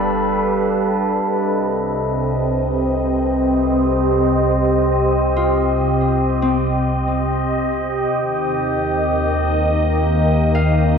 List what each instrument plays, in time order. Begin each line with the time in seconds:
Already playing: sub bass G1, ambient pad G3 D4 A4 B4, harp B3 F5, glass harmonica F5
1.22 sub bass C2, ambient pad C3, glass harmonica D#5
1.66 ambient pad G4
1.89 ambient pad C4 D#5
5.36 harp F4
6.42 harp C4
8.13 sub bass D#2, ambient pad D#3
9.00 ambient pad A#3
10.55 harp F5